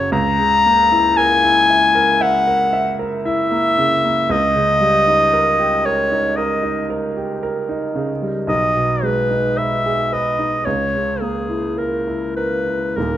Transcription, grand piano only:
Already playing: C#3 C#4 F#4 A4 C#5
0.12 C#2
0.39 C#3
0.66 A#3
0.92 E4
1.17 A#4
1.44 E4
1.70 E5
1.95 A#4
2.21 E5
2.47 A#4
2.73 E5
2.99 A#4
3.25 E4
3.51 A#3
3.78 C#3
4.04 A#3
4.30 C#2
4.55 C#3
4.80 G3
5.08 D#4
5.33 A#4
5.60 G4
5.86 A#4
6.12 D#4
6.38 A#4
6.63 D#4
6.90 A#4
7.17 G4
7.43 A#4
7.69 D#4
7.95 C#3
8.22 G3
8.47 B1
8.76 B2
9.03 G#3
9.31 D#4
9.59 B4
9.86 G#4
10.12 B4
10.39 D#4
10.67 C#2
10.94 C#3
11.21 A#3
11.49 E4
11.78 A#4
12.08 E4
12.37 A#4
12.68 E4
12.97 D#1 D#2

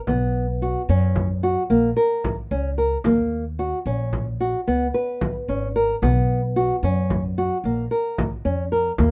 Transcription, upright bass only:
0.08 B1
0.89 F#2
1.70 A#1
2.51 C#2
3.05 D#2
3.86 A#1
4.68 C#2
5.48 G#1
6.02 B1
6.83 F#2
7.64 A#1
8.45 F2
8.99 D#2

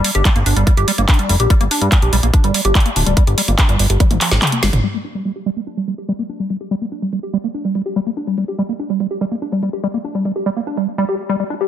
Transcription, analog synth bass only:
0.15 G1
0.36 G1
0.46 G1
0.56 G1
0.77 G1
0.98 G1
1.29 F1
1.40 A#1
1.61 G1
1.81 G2
2.02 A#1
2.13 A#1
2.23 A#1
2.44 G1
2.65 G1
2.96 D1
3.06 D1
3.27 G1
3.48 G1
3.69 G1
3.79 G1
3.90 G1
4.11 G#1
4.31 G#1
4.63 G1
4.73 G1

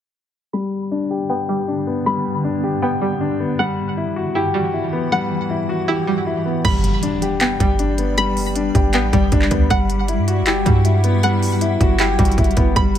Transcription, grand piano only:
0.53 G3
0.91 D4
1.10 G4
1.30 G5
1.49 G4
1.68 D4
1.87 B3
2.06 G3
2.44 D4
2.63 G4
2.82 G5
3.02 G4
3.21 D4
3.40 B3
3.59 G3
3.97 E4
4.16 F#4
4.35 G4
4.54 F#4
4.74 E4
4.93 B3
5.12 G3
5.50 E4
5.69 F#4
5.88 G4
6.07 F#4
6.26 E4
6.45 B3
6.65 G3
7.03 D4
7.22 G4
7.41 G5
7.60 G4
7.79 D4
7.98 B3
8.18 G3
8.56 D4
8.75 G4
8.94 G5
9.13 G4
9.32 D4
9.51 B3
9.70 G3
10.09 E4
10.28 F#4
10.47 G4
10.66 F#4
10.85 E4
11.04 B3
11.23 G3
11.61 E4
11.81 F#4
12.00 G4
12.19 F#4
12.38 E4
12.57 B3
12.76 G3

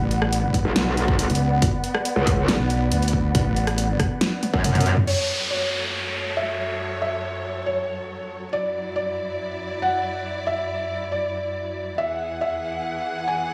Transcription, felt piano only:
5.07 C#5
5.51 C#5
6.37 E5
7.02 E5
7.66 C#5
8.53 D5
8.96 D5
9.82 F#5
10.47 E5
11.12 D5
11.98 E5
12.41 E5
13.28 G#5

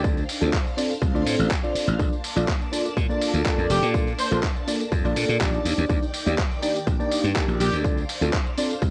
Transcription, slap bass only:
Already playing: D2
0.42 D2
1.02 C2
1.15 D2
1.26 A2
1.39 A1
1.75 muted slap bass stroke
1.88 A1
1.99 A#1
2.36 A#1
2.97 A#2
3.34 D2
3.58 F2
3.70 F1
3.82 A#2
4.31 A#1
4.92 F2
5.05 A#1
5.16 A#2
5.29 A#2
5.41 A#1
5.65 D#2
5.78 D#2
5.89 D#2
6.26 D#2
6.87 A#1
7.24 G2
7.48 A#1
7.60 A#1
7.72 D2
8.21 D2
8.82 C2

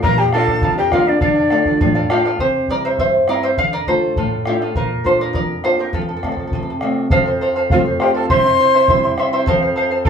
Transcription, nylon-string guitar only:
0.04 A#2
0.34 A#3 D4 F4
0.63 F2
0.92 A#3 D4 F4
1.22 D3
1.51 A3 D4 F4
1.81 A2
2.10 A3 D4 F4
2.40 C3
2.69 G3 C4 E4
2.99 G2
3.28 G3 C4 E4
3.58 D3
3.87 A3 D4 F4
4.17 A2
4.46 A3 D4 F4
4.75 A#2
5.04 A#3 D4 F4
5.33 F2
5.64 A#3 D4 F4
5.93 F2
6.23 F3 A3 C4
6.53 C3
6.82 F3 A3 C4
7.12 F2
7.72 F3 A3 C4
8.31 C3
8.89 G3 C4 E4
9.47 F2
10.06 A3 C4

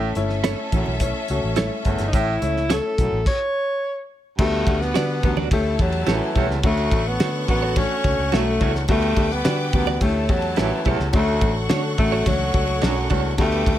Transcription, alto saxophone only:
2.07 D#4
2.14 E4
2.72 A4
3.27 C#5
4.40 A3
4.82 B3
5.24 B3
5.53 A3
5.81 F#3
6.10 E3
6.66 A3
7.08 B3
7.50 B3
7.78 C#4
8.33 A3
8.91 A3
9.33 B3
9.75 B3
10.03 A3
10.30 F#3
10.58 E3
11.15 A3
11.99 A3
12.27 F#3
13.40 A3

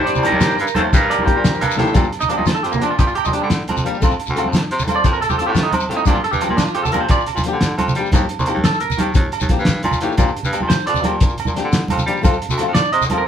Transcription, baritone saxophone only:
0.16 C2
0.33 D#2
0.59 G2
0.76 D#2
0.93 G2
1.20 C2
1.35 A#2
1.61 G2
1.78 A2
1.95 A#2
2.37 A#2
2.63 F2
2.81 A#2
2.99 A#2
3.26 A#2
3.43 D3
3.68 F2
3.86 G3
4.03 F2
4.29 D2
4.47 F2
4.71 C3
4.87 F3
5.04 F2
5.30 F2
5.47 A2
5.72 C3
5.88 A2
6.07 A#2
6.32 G2
6.49 A#2
6.74 F2
6.90 A#2
7.09 A#2
7.35 A#2
7.52 D3
7.77 F2
7.95 G3
8.13 D#2
8.39 C2
8.54 D#2
8.98 D#3
9.15 D#2
9.41 D#2
9.59 G2
9.83 A#2
10.01 A2
10.18 A#2
10.45 G2
10.62 A#2
10.87 F2
11.04 A#2
11.21 A#2
11.47 A#2
11.64 D3
11.90 F2
12.06 G3
12.24 F2
12.50 D2
12.68 F2
12.93 C3
13.09 F3

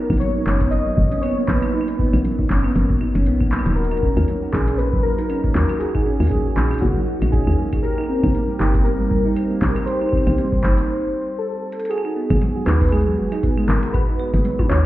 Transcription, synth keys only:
0.20 C#5
0.71 D#5
1.21 C#5
1.47 B4
3.76 A#4
4.52 G#4
4.78 B4
5.03 A#4
5.79 G#4
6.30 G#4
6.81 F#4
7.32 G#4
7.82 A#4
8.59 G4
8.84 A#4
9.86 C5
11.38 A4
11.89 G#4
12.66 B4
12.91 G#4
13.67 A#4
13.93 B4
14.69 C#5

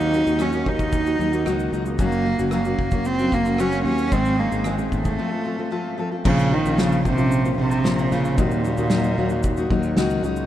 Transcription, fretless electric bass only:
Already playing: D#2
0.27 D#2
0.66 D#2
1.19 D#2
1.46 C#2
1.72 C#2
1.99 F#1
2.39 F#1
2.79 F#1
3.32 F#1
3.84 D#2
4.12 G#1
4.52 G#1
4.92 G#1
6.25 A#1
6.65 A#1
7.05 A#1
7.58 A#1
8.12 A#1
8.38 D#2
8.78 D#2
9.18 D#2
9.70 D#2
9.97 C#2
10.23 C#2

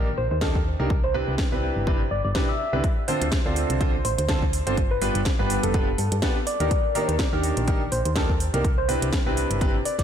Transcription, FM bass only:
Already playing: A#1
0.18 A#1
0.31 D#2
0.80 C2
1.28 C2
1.52 C2
1.76 G1
2.11 G1
2.25 G1
2.73 C2
3.21 D2
3.46 D2
3.70 C2
4.05 A1
4.18 D2
4.67 G1
5.15 G1
5.39 G1
5.63 F1
5.98 G2
6.12 G2
6.60 D#2
7.09 D#2
7.33 D#2
7.57 A#1
7.92 A#1
8.06 D#2
8.54 C2
9.02 C2
9.26 C2
9.51 G1
9.99 C2

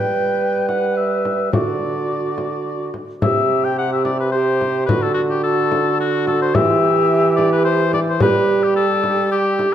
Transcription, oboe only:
Already playing: G5
0.68 F#5
0.97 E5
1.53 D5
3.22 E5
3.64 G5
3.78 F#5
3.92 E5
4.05 D5
4.20 B4
4.32 C5
4.86 B4
5.02 A4
5.14 F#4
5.30 G4
5.43 A4
6.00 F#4
6.27 A4
6.42 C5
6.55 E5
7.36 D5
7.52 B4
7.64 C5
7.93 D5
8.09 C5
8.22 B4
8.63 G4
8.76 A4
9.31 G4

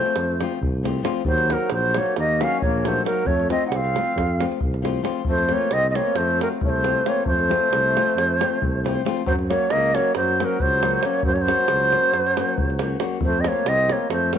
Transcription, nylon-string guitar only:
Already playing: F3 A3 C4 F4
0.40 F3 A3 C4 F4
0.83 F3 A3 C4 F4
1.03 F3 A3 C4 F4
1.49 F#3 A#3 D#4 F#4
1.96 F#3 A#3 D#4 F#4
2.40 F#3 A#3 D#4 F#4
2.84 F#3 A#3 D#4 F#4
3.05 F#3 A#3 D#4 F#4
3.49 F3 A3 C4 F4
3.95 F3 A3 C4 F4
4.39 F3 A3 C4 F4
4.82 F3 A3 C4 F4
5.03 F3 A3 C4 F4
5.49 F3 A3 C4 F4
5.94 F3 A3 C4 F4
6.39 F3 A3 C4 F4
6.83 F3 A3 C4 F4
7.05 F3 A3 C4 F4
7.49 F3 A3 C4 F4
7.95 F3 A3 C4 F4
8.40 F3 A3 C4 F4
8.84 F3 A3 C4 F4
9.05 F3 A3 C4 F4
9.50 F#3 A#3 C#4 F#4
9.94 F#3 A#3 C#4 F#4
10.40 F#3 A#3 C#4 F#4
10.83 F#3 A#3 C#4 F#4
11.04 F#3 A#3 C#4 F#4
11.47 F#3 A#3 C#4 F#4
11.92 F#3 A#3 C#4 F#4
12.36 F#3 A#3 C#4 F#4
12.79 F#3 A#3 C#4 F#4
13.00 F#3 A#3 C#4 F#4
13.44 F3 A3 C4 F4
13.88 F3 A3 C4 F4
14.33 F3 A3 C4 F4

